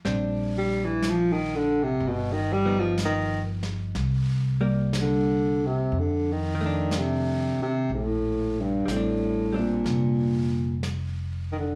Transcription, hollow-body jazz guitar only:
0.05 G3 C4 D4
2.65 F3 B3 D#4
4.61 G3 A#3
6.55 D#3
6.61 A3
6.66 D4
8.86 G3
8.91 C4
8.96 D4
9.53 G3 C4 D4

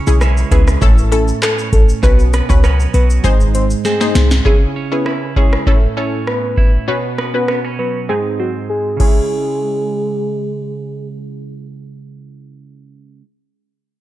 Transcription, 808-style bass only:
0.07 B1
0.51 C#2
0.82 A1
1.73 A1
2.03 B1
2.50 C#2
2.94 B1
3.24 G#1
4.15 C2

